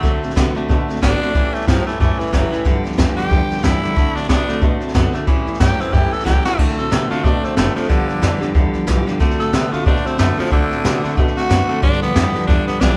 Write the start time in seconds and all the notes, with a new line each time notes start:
Already playing: F#3
0.03 D2 D3 A3 C4 F#4, kick, snare
0.22 A2 A3 C4 F#4, snare
0.30 snare
0.35 C3 D3 A3 B3 C4 F#4, kick, snare, hi-hat pedal
0.55 D3 A3 C4 F#4, muted upright bass stroke, snare
0.68 B2 D3 A3 C4 F#4, kick, snare
0.88 A3 C4 F#4, muted upright bass stroke, snare
0.96 snare
1.01 G#1 D3 A3 B3 C4 D4 F#4, kick, snare, hi-hat pedal
1.22 D3 A3 C4 F#4, muted upright bass stroke, snare
1.35 A1 A2 E3 G3 C#4 E4, kick, snare
1.54 E2 G3 A3 C#4 E4, snare
1.61 snare
1.67 G2 A2 E3 F3 F#3 G3 C#4 E4, kick, snare, hi-hat pedal
1.86 A2 E3 G3 A3 C#4 E4, muted upright bass stroke, snare
2.00 F#2 A2 E3 G3 A3 C#4 E4, kick, snare
2.19 E3 G3 C#4 E4, muted upright bass stroke, snare
2.27 snare
2.33 F#1 A2 E3 F#3 G3 C#4 E4, kick, snare, hi-hat pedal
2.52 A2 E3 G3 C#4 E4, muted upright bass stroke, snare
2.65 G1 G2 D3 F3 G3 B3 G4, kick, snare
2.84 D2 F3 G3 B3 G4, snare
2.92 snare
2.97 F2 G2 D3 E3 F3 G3 B3 G4, kick, snare, hi-hat pedal
3.17 G2 D3 F3 G3 B3 G4, muted upright bass stroke, snare
3.30 E2 G2 D3 F3 G3 B3 G4, kick, snare
3.50 F3 G3 B3 G4, muted upright bass stroke, snare
3.57 snare
3.63 E2 G2 D3 E3 F3 G3 B3 E4 G4, kick, snare, hi-hat pedal
3.82 G2 D3 F3 G3 B3 G4, snare
3.95 D2 D3 A3 C4 F#4, kick, snare
4.15 A2 A3 C4 D4 F#4, snare
4.23 snare
4.29 C3 D3 A3 B3 C4 D4 F#4, kick, snare, hi-hat pedal
4.48 D3 A3 C4 F#4, muted upright bass stroke, snare
4.61 B2 D3 A3 C4 F#4, kick, snare
4.80 A3 C4 F#4, muted upright bass stroke, snare
4.88 snare
4.94 F#2 D3 A3 B3 C4 F#4, kick, snare, hi-hat pedal
5.13 D3 A3 C4 F#4, muted upright bass stroke, snare
5.27 A1 A2 E3 G3 C#4 E4, kick, snare
5.46 E2 G3 C#4 E4, snare
5.53 snare
5.60 G2 A2 E3 F#3 G3 C#4 E4 G4, kick, snare, hi-hat pedal
5.78 A2 E3 G3 C4 C#4 E4, muted upright bass stroke, snare
5.92 F#2 A2 E3 G3 C#4 E4 G4, kick, snare
6.11 G3 C#4 E4 A4, muted upright bass stroke, snare
6.19 snare
6.24 C#2 A2 E3 F#3 G3 C#4 E4 G4, kick, snare, hi-hat pedal
6.44 A2 E3 G3 C#4 E4 F#4, muted upright bass stroke, snare
6.57 D2 D3 A3 C4 F#4, kick, snare, crash
6.69 snare
6.77 A2 A3 C4 F#4 A4, snare
6.91 C3 D3 A3 B3 C4 F#4, snare, hi-hat pedal
7.10 D3 A3 C4 F4 F#4, muted upright bass stroke, snare
7.18 snare
7.23 B2 D3 A3 C4 D4 F#4, kick, snare
7.43 A3 C4 F#4, muted upright bass stroke, snare
7.56 F#1 D3 A3 B3 C4 F#4, snare, hi-hat pedal
7.76 D3 F3 A3 C4 F#4, muted upright bass stroke, snare
7.83 snare
7.89 G1 G2 D3 F3 G3 B3 G4, kick, snare
8.09 D2 F3 G3 B3 G4, snare
8.22 F2 G2 D3 E3 F3 G3 B3 G4, snare, hi-hat pedal
8.41 G2 D3 F3 G3 B3 G4, muted upright bass stroke, snare
8.54 E2 G2 D3 F3 G3 B3 G4, kick, snare
8.73 F3 G3 B3 G4, muted upright bass stroke, snare
8.87 B1 G2 D3 E3 F3 G3 B3 G4, snare, hi-hat pedal
9.06 G2 D3 F3 G3 B3 G4, muted upright bass stroke, snare
9.20 D2 D3 A3 C4 F#4, kick, snare
9.30 snare
9.39 A2 A3 C4 F#4 A4, snare
9.53 C3 D3 A3 B3 C4 F#4, snare, hi-hat pedal
9.72 D3 A3 C4 F4 F#4, muted upright bass stroke, snare
9.85 B2 D3 A3 C4 D4 F#4, kick, snare
9.96 snare
10.05 A3 C4 F#4, muted upright bass stroke, snare
10.18 F#2 D3 A3 B3 C4 F#4, snare, hi-hat pedal
10.37 D3 F3 A3 C4 F#4, muted upright bass stroke, snare
10.45 snare
10.51 D2 D3 A3 C4 F#4, kick, snare
10.71 A2 A3 C4 F#4, snare
10.84 C3 D3 A3 B3 C4 F#4, snare, hi-hat pedal
11.03 D3 A3 C4 F#4, muted upright bass stroke, snare
11.11 snare
11.16 B2 D3 A3 C4 F#4, kick, snare
11.27 snare
11.36 A3 C4 F#4, muted upright bass stroke, snare
11.50 F#2 D3 A3 B3 C4 F#4, snare, hi-hat pedal
11.69 D3 A3 C4 F#4, muted upright bass stroke, snare
11.82 G1 G2 D3 F3 G3 B3 D4 G4, kick, snare
11.92 snare
12.02 D2 F3 G3 B3 G4, snare
12.15 F2 G2 D3 E3 F3 G3 B3 G4, snare, hi-hat pedal
12.34 G2 D3 F3 G3 B3 G4, muted upright bass stroke, snare
12.42 snare
12.47 E2 G2 D3 F3 G3 B3 D4 G4, kick, snare
12.67 F3 G3 B3 G4, muted upright bass stroke, snare
12.80 B1 G2 D3 E3 F3 G3 B3 D4 G4, snare, hi-hat pedal